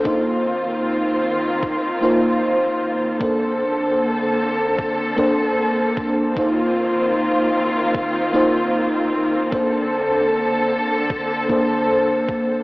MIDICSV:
0, 0, Header, 1, 4, 480
1, 0, Start_track
1, 0, Key_signature, -2, "major"
1, 0, Tempo, 789474
1, 32, Time_signature, 4, 2, 24, 8
1, 7681, End_track
2, 0, Start_track
2, 0, Title_t, "FM electric piano"
2, 0, Program_c, 0, 5
2, 0, Control_c, 0, 64, 127
2, 23, Note_on_c, 0, 58, 68
2, 28, Note_on_c, 0, 63, 63
2, 36, Note_on_c, 0, 65, 62
2, 40, Control_c, 0, 64, 0
2, 41, Note_on_c, 0, 72, 76
2, 164, Control_c, 0, 64, 127
2, 1199, Note_off_c, 0, 58, 0
2, 1202, Note_off_c, 0, 63, 0
2, 1206, Note_off_c, 0, 65, 0
2, 1208, Note_off_c, 0, 72, 0
2, 1223, Note_on_c, 0, 58, 67
2, 1230, Note_on_c, 0, 63, 62
2, 1236, Note_on_c, 0, 65, 62
2, 1241, Note_on_c, 0, 72, 77
2, 1919, Note_off_c, 0, 58, 0
2, 1923, Note_off_c, 0, 63, 0
2, 1926, Note_off_c, 0, 65, 0
2, 1929, Note_off_c, 0, 72, 0
2, 1943, Note_on_c, 0, 58, 70
2, 1950, Note_on_c, 0, 62, 64
2, 1956, Note_on_c, 0, 69, 65
2, 1959, Control_c, 0, 64, 0
2, 1962, Note_on_c, 0, 72, 77
2, 2063, Control_c, 0, 64, 127
2, 3120, Note_off_c, 0, 58, 0
2, 3123, Note_off_c, 0, 62, 0
2, 3126, Note_off_c, 0, 69, 0
2, 3129, Note_off_c, 0, 72, 0
2, 3143, Note_on_c, 0, 58, 74
2, 3149, Note_on_c, 0, 62, 65
2, 3155, Note_on_c, 0, 69, 64
2, 3160, Note_on_c, 0, 72, 79
2, 3839, Note_off_c, 0, 58, 0
2, 3842, Note_off_c, 0, 62, 0
2, 3845, Note_off_c, 0, 69, 0
2, 3848, Note_off_c, 0, 72, 0
2, 3864, Note_on_c, 0, 58, 73
2, 3871, Note_on_c, 0, 63, 65
2, 3876, Note_on_c, 0, 65, 64
2, 3880, Control_c, 0, 64, 0
2, 3883, Note_on_c, 0, 72, 79
2, 4001, Control_c, 0, 64, 127
2, 5040, Note_off_c, 0, 58, 0
2, 5043, Note_off_c, 0, 63, 0
2, 5046, Note_off_c, 0, 65, 0
2, 5049, Note_off_c, 0, 72, 0
2, 5064, Note_on_c, 0, 58, 71
2, 5070, Note_on_c, 0, 63, 66
2, 5075, Note_on_c, 0, 65, 69
2, 5082, Note_on_c, 0, 72, 82
2, 5760, Note_off_c, 0, 58, 0
2, 5763, Note_off_c, 0, 63, 0
2, 5765, Note_off_c, 0, 65, 0
2, 5769, Note_off_c, 0, 72, 0
2, 5783, Note_on_c, 0, 58, 69
2, 5790, Note_on_c, 0, 62, 65
2, 5795, Note_on_c, 0, 69, 66
2, 5801, Control_c, 0, 64, 0
2, 5801, Note_on_c, 0, 72, 79
2, 5902, Control_c, 0, 64, 127
2, 6960, Note_off_c, 0, 58, 0
2, 6963, Note_off_c, 0, 62, 0
2, 6965, Note_off_c, 0, 69, 0
2, 6968, Note_off_c, 0, 72, 0
2, 6982, Note_on_c, 0, 58, 74
2, 6988, Note_on_c, 0, 62, 66
2, 6994, Note_on_c, 0, 69, 68
2, 7000, Note_on_c, 0, 72, 82
2, 7679, Note_off_c, 0, 58, 0
2, 7681, Note_off_c, 0, 62, 0
2, 7681, Note_off_c, 0, 69, 0
2, 7681, Note_off_c, 0, 72, 0
2, 7681, End_track
3, 0, Start_track
3, 0, Title_t, "String section"
3, 0, Program_c, 1, 48
3, 29, Note_on_c, 1, 51, 72
3, 30, Note_on_c, 1, 58, 66
3, 30, Note_on_c, 1, 60, 68
3, 30, Note_on_c, 1, 65, 77
3, 1931, Note_off_c, 1, 51, 0
3, 1932, Note_off_c, 1, 60, 0
3, 1932, Note_off_c, 1, 65, 0
3, 1955, Note_on_c, 1, 60, 65
3, 1956, Note_on_c, 1, 69, 82
3, 1957, Note_on_c, 1, 50, 75
3, 3854, Note_off_c, 1, 69, 0
3, 3855, Note_off_c, 1, 50, 0
3, 3872, Note_on_c, 1, 51, 76
3, 3873, Note_on_c, 1, 65, 85
3, 5772, Note_off_c, 1, 51, 0
3, 5773, Note_off_c, 1, 65, 0
3, 5789, Note_on_c, 1, 50, 74
3, 5789, Note_on_c, 1, 69, 86
3, 7681, Note_off_c, 1, 50, 0
3, 7681, Note_off_c, 1, 58, 0
3, 7681, Note_off_c, 1, 60, 0
3, 7681, Note_off_c, 1, 69, 0
3, 7681, End_track
4, 0, Start_track
4, 0, Title_t, "Drums"
4, 30, Note_on_c, 9, 36, 104
4, 91, Note_off_c, 9, 36, 0
4, 990, Note_on_c, 9, 36, 106
4, 1051, Note_off_c, 9, 36, 0
4, 1950, Note_on_c, 9, 36, 105
4, 2011, Note_off_c, 9, 36, 0
4, 2911, Note_on_c, 9, 36, 105
4, 2972, Note_off_c, 9, 36, 0
4, 3151, Note_on_c, 9, 36, 58
4, 3212, Note_off_c, 9, 36, 0
4, 3631, Note_on_c, 9, 36, 95
4, 3691, Note_off_c, 9, 36, 0
4, 3871, Note_on_c, 9, 36, 114
4, 3932, Note_off_c, 9, 36, 0
4, 4831, Note_on_c, 9, 36, 113
4, 4892, Note_off_c, 9, 36, 0
4, 5790, Note_on_c, 9, 36, 108
4, 5850, Note_off_c, 9, 36, 0
4, 6749, Note_on_c, 9, 36, 110
4, 6810, Note_off_c, 9, 36, 0
4, 6989, Note_on_c, 9, 36, 59
4, 7050, Note_off_c, 9, 36, 0
4, 7470, Note_on_c, 9, 36, 96
4, 7530, Note_off_c, 9, 36, 0
4, 7681, End_track
0, 0, End_of_file